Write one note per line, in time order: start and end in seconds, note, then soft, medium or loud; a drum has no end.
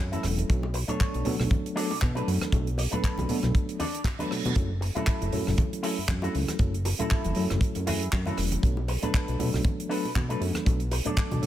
0.00 0.19 F#2 medium
0.12 0.47 F#3 medium
0.12 0.47 A3 medium
0.12 0.47 C#4 medium
0.12 0.23 E4 medium
0.12 0.47 E4 medium
0.12 0.24 F#4 medium
0.12 0.24 A4 medium
0.12 0.47 A4 loud
0.12 closed hi-hat medium
0.12 high conga medium
0.23 0.44 E1 medium
0.23 cross-stick medium
0.23 open hi-hat medium
0.23 high bongo soft
0.37 muted clean electric guitar stroke soft
0.37 closed hi-hat medium
0.37 high conga medium
0.49 0.84 B1 loud
0.49 0.63 F#3 medium
0.49 0.63 A3 medium
0.49 0.63 B3 medium
0.49 0.63 D4 medium
0.49 0.63 A4 medium
0.49 kick loud
0.49 closed hi-hat medium
0.63 high bongo medium
0.74 muted clean electric guitar stroke loud
0.74 open hi-hat medium
0.88 1.23 F#3 medium
0.88 1.23 A3 medium
0.88 1.23 B3 medium
0.88 1.32 D4 medium
0.88 1.23 D4 medium
0.88 1.33 A4 medium
0.88 1.23 A4 medium
0.88 1.33 C#5 medium
0.88 closed hi-hat medium
0.88 high bongo medium
0.88 low conga medium
1.00 kick medium
1.00 clap loud
1.00 closed hi-hat medium
1.14 1.23 B1 medium
1.14 closed hi-hat medium
1.25 1.37 B2 medium
1.25 1.73 F#3 medium
1.25 1.73 A3 medium
1.25 1.74 B3 medium
1.25 1.74 D4 medium
1.25 1.74 A4 loud
1.25 open hi-hat medium
1.25 high bongo medium
1.25 low conga medium
1.40 1.49 B1 medium
1.40 cross-stick medium
1.40 low conga medium
1.50 kick loud
1.50 closed hi-hat medium
1.50 high bongo medium
1.50 high conga medium
1.66 closed hi-hat medium
1.75 1.90 F#3 medium
1.75 1.90 A3 medium
1.75 1.90 B3 medium
1.75 1.96 D4 loud
1.75 1.90 D4 medium
1.75 1.96 A4 loud
1.75 1.90 A4 loud
1.75 1.97 D5 loud
1.75 open hi-hat loud
1.91 2.00 B2 soft
1.91 high bongo medium
2.01 2.23 B2 medium
2.01 kick medium
2.01 clap loud
2.01 closed hi-hat medium
2.01 high conga medium
2.15 2.50 F#3 medium
2.15 2.50 A3 medium
2.15 2.50 B3 medium
2.15 2.27 D4 medium
2.15 2.50 D4 medium
2.15 2.27 A4 medium
2.15 2.50 A4 medium
2.15 2.28 B4 medium
2.15 closed hi-hat soft
2.15 high bongo medium
2.27 2.38 F#2 medium
2.27 open hi-hat loud
2.41 muted clean electric guitar stroke soft
2.41 cross-stick medium
2.41 closed hi-hat medium
2.41 high conga medium
2.52 2.87 B1 loud
2.52 2.66 F#3 medium
2.52 2.66 A3 medium
2.52 2.67 B3 medium
2.52 2.67 D4 medium
2.52 2.67 A4 medium
2.52 kick loud
2.52 closed hi-hat medium
2.52 high bongo medium
2.67 closed hi-hat soft
2.78 muted clean electric guitar stroke loud
2.78 open hi-hat loud
2.78 high bongo soft
2.91 3.26 F#3 medium
2.91 3.26 A3 medium
2.91 3.26 B3 medium
2.91 3.36 D4 medium
2.91 3.27 D4 medium
2.91 3.36 A4 medium
2.91 3.27 A4 medium
2.91 3.36 B4 medium
2.91 closed hi-hat soft
2.91 low conga medium
3.04 kick medium
3.04 clap loud
3.04 closed hi-hat medium
3.18 3.27 B1 medium
3.18 closed hi-hat soft
3.18 high bongo medium
3.18 high conga medium
3.29 3.40 B2 medium
3.29 3.77 F#3 medium
3.29 3.77 A3 medium
3.29 3.77 B3 medium
3.29 3.78 D4 medium
3.29 3.78 A4 loud
3.29 open hi-hat medium
3.29 low conga medium
3.43 3.52 B1 medium
3.43 cross-stick medium
3.43 closed hi-hat soft
3.43 high bongo medium
3.43 low conga medium
3.54 kick loud
3.54 closed hi-hat medium
3.54 reverse cymbal medium
3.69 closed hi-hat medium
3.79 3.99 D4 loud
3.79 4.00 A4 loud
3.79 4.00 D5 loud
3.79 open hi-hat loud
3.79 high bongo medium
3.79 high conga medium
3.95 closed hi-hat medium
4.04 kick loud
4.04 clap loud
4.04 closed hi-hat medium
4.04 high bongo medium
4.19 4.28 F#3 medium
4.19 4.28 A3 medium
4.19 4.28 B3 medium
4.19 4.30 D4 medium
4.19 4.28 D4 medium
4.19 4.31 A4 medium
4.19 4.28 A4 medium
4.19 4.31 B4 medium
4.19 closed hi-hat medium
4.19 high conga medium
4.30 4.42 B2 soft
4.30 4.53 F#3 medium
4.30 4.53 A3 medium
4.30 4.54 B3 medium
4.30 4.54 D4 medium
4.30 4.54 A4 medium
4.30 cross-stick medium
4.30 open hi-hat medium
4.44 4.54 B2 medium
4.44 muted clean electric guitar stroke soft
4.44 closed hi-hat medium
4.44 high bongo medium
4.44 high conga medium
4.56 4.91 F#1 medium
4.56 4.70 F#3 medium
4.56 4.70 A3 medium
4.56 4.70 C#4 medium
4.56 4.70 E4 medium
4.56 4.70 A4 medium
4.56 kick loud
4.56 closed hi-hat medium
4.56 high bongo soft
4.81 muted clean electric guitar stroke loud
4.81 open hi-hat medium
4.95 5.30 F#3 medium
4.95 5.30 A3 medium
4.95 5.30 C#4 medium
4.95 5.39 E4 medium
4.95 5.30 E4 medium
4.95 5.40 F#4 medium
4.95 5.30 A4 medium
4.95 5.40 A4 medium
4.95 closed hi-hat soft
4.95 high bongo medium
4.95 low conga medium
5.07 kick loud
5.07 clap loud
5.07 closed hi-hat medium
5.22 5.30 F#1 medium
5.22 closed hi-hat soft
5.22 high bongo medium
5.32 5.44 F#2 medium
5.32 5.81 F#3 medium
5.32 5.81 A3 medium
5.32 5.81 C#4 medium
5.32 5.81 E4 medium
5.32 5.81 A4 loud
5.32 open hi-hat medium
5.32 low conga medium
5.47 5.56 F#1 medium
5.47 cross-stick medium
5.47 low conga medium
5.58 kick loud
5.58 closed hi-hat medium
5.58 high bongo medium
5.58 high conga medium
5.73 closed hi-hat medium
5.83 5.97 F#3 medium
5.83 5.97 A3 medium
5.83 5.97 C#4 medium
5.83 6.03 E4 loud
5.83 5.97 E4 medium
5.83 6.03 F#4 loud
5.83 5.98 A4 loud
5.83 6.04 A4 loud
5.83 open hi-hat loud
5.83 high bongo soft
5.98 6.07 F#2 soft
6.08 6.29 F#2 medium
6.08 kick medium
6.08 clap loud
6.08 high conga medium
6.22 6.57 F#3 medium
6.22 6.57 A3 medium
6.22 6.57 C#4 medium
6.22 6.34 E4 medium
6.22 6.57 E4 medium
6.22 6.34 F#4 medium
6.22 6.57 A4 loud
6.22 6.35 A4 loud
6.22 closed hi-hat medium
6.22 high bongo medium
6.35 6.46 C#2 medium
6.35 open hi-hat medium
6.48 muted clean electric guitar stroke soft
6.48 cross-stick medium
6.48 closed hi-hat medium
6.48 high bongo soft
6.48 high conga medium
6.59 6.94 F#1 loud
6.59 6.74 F#3 medium
6.59 6.74 A3 medium
6.59 6.74 C#4 medium
6.59 6.74 E4 medium
6.59 6.74 A4 medium
6.59 kick loud
6.59 closed hi-hat medium
6.74 closed hi-hat soft
6.85 muted clean electric guitar stroke loud
6.85 open hi-hat loud
6.85 high bongo medium
6.99 7.33 F#3 medium
6.99 7.33 A3 medium
6.99 7.33 C#4 medium
6.99 7.43 E4 medium
6.99 7.33 E4 medium
6.99 7.43 F#4 medium
6.99 7.33 A4 medium
6.99 7.44 A4 medium
6.99 closed hi-hat medium
6.99 low conga medium
7.10 kick loud
7.10 clap loud
7.10 closed hi-hat medium
7.10 high bongo medium
7.24 7.34 F#1 medium
7.24 closed hi-hat soft
7.24 high conga medium
7.35 7.47 F#2 medium
7.35 7.84 F#3 medium
7.35 7.84 A3 medium
7.35 7.84 C#4 medium
7.35 7.85 E4 medium
7.35 7.85 A4 loud
7.35 open hi-hat medium
7.50 7.59 F#1 medium
7.50 cross-stick medium
7.50 closed hi-hat medium
7.50 high bongo medium
7.50 low conga medium
7.61 kick loud
7.61 closed hi-hat medium
7.75 8.09 F#2 medium
7.75 closed hi-hat medium
7.75 high bongo medium
7.87 8.01 F#3 medium
7.87 8.01 A3 medium
7.87 8.01 C#4 medium
7.87 8.06 E4 loud
7.87 8.01 E4 medium
7.87 8.07 F#4 loud
7.87 8.07 G#4 loud
7.87 8.01 A4 loud
7.87 open hi-hat loud
7.87 high conga medium
8.02 closed hi-hat soft
8.13 8.33 F#2 medium
8.13 kick loud
8.13 clap loud
8.13 closed hi-hat medium
8.13 high bongo medium
8.26 8.60 F#3 medium
8.26 8.60 A3 medium
8.26 8.60 C#4 medium
8.26 8.37 E4 medium
8.26 8.60 E4 medium
8.26 8.38 F#4 medium
8.26 8.38 A4 loud
8.26 closed hi-hat soft
8.26 high conga medium
8.37 8.58 E1 medium
8.37 cross-stick medium
8.37 open hi-hat loud
8.37 high bongo soft
8.52 muted clean electric guitar stroke soft
8.52 closed hi-hat medium
8.52 high conga medium
8.62 8.98 B1 loud
8.62 8.77 F#3 medium
8.62 8.77 A3 medium
8.62 8.77 B3 medium
8.62 8.77 D4 medium
8.62 8.77 A4 medium
8.62 kick loud
8.62 closed hi-hat medium
8.77 high bongo medium
8.88 muted clean electric guitar stroke loud
8.88 open hi-hat loud
9.02 9.36 F#3 medium
9.02 9.36 A3 medium
9.02 9.37 B3 medium
9.02 9.46 D4 medium
9.02 9.37 D4 medium
9.02 9.47 A4 medium
9.02 9.37 A4 medium
9.02 9.47 B4 medium
9.02 closed hi-hat medium
9.02 high bongo medium
9.02 low conga medium
9.14 kick loud
9.14 clap loud
9.14 closed hi-hat medium
9.28 9.37 B1 medium
9.28 closed hi-hat medium
9.39 9.50 B2 medium
9.39 9.87 F#3 medium
9.39 9.87 A3 medium
9.39 9.88 B3 medium
9.39 9.88 D4 medium
9.39 9.88 A4 loud
9.39 open hi-hat medium
9.39 high bongo medium
9.39 low conga medium
9.54 9.62 B1 medium
9.54 cross-stick medium
9.54 low conga medium
9.64 kick loud
9.64 closed hi-hat medium
9.64 high bongo medium
9.64 high conga medium
9.80 closed hi-hat medium
9.89 10.04 F#3 medium
9.89 10.04 A3 medium
9.89 10.04 B3 medium
9.89 10.10 D4 loud
9.89 10.04 D4 medium
9.89 10.10 A4 loud
9.89 10.04 A4 loud
9.89 10.10 B4 loud
9.89 open hi-hat loud
10.05 10.14 B2 soft
10.05 high bongo medium
10.15 10.36 B2 medium
10.15 kick loud
10.15 clap loud
10.15 closed hi-hat medium
10.15 high conga medium
10.29 10.63 F#3 medium
10.29 10.63 A3 medium
10.29 10.63 B3 medium
10.29 10.41 D4 medium
10.29 10.64 D4 medium
10.29 10.64 A4 medium
10.29 10.41 A4 medium
10.29 10.41 B4 medium
10.29 closed hi-hat soft
10.29 high bongo soft
10.41 10.52 F#2 medium
10.41 open hi-hat loud
10.55 muted clean electric guitar stroke soft
10.55 cross-stick medium
10.55 closed hi-hat medium
10.55 high conga medium
10.65 11.01 B1 medium
10.65 10.80 F#3 medium
10.65 10.80 A3 medium
10.65 10.80 B3 medium
10.65 10.80 D4 medium
10.65 10.80 A4 medium
10.65 kick loud
10.65 closed hi-hat medium
10.65 high bongo medium
10.80 closed hi-hat medium
10.91 muted clean electric guitar stroke loud
10.91 open hi-hat loud
10.91 high bongo soft
11.05 11.40 F#3 medium
11.05 11.39 A3 medium
11.05 11.40 B3 medium
11.05 11.46 D4 medium
11.05 11.40 D4 medium
11.05 11.40 A4 medium
11.05 11.46 A4 medium
11.05 11.46 D5 medium
11.05 closed hi-hat soft
11.05 low conga medium
11.17 kick loud
11.17 clap loud
11.17 closed hi-hat medium
11.31 11.40 B1 medium
11.31 closed hi-hat soft
11.31 high bongo medium
11.31 high conga medium
11.41 11.46 B2 medium
11.41 11.46 F#3 medium
11.41 11.46 A3 medium
11.41 11.46 B3 medium
11.41 11.46 D4 medium
11.41 11.46 A4 loud
11.41 open hi-hat loud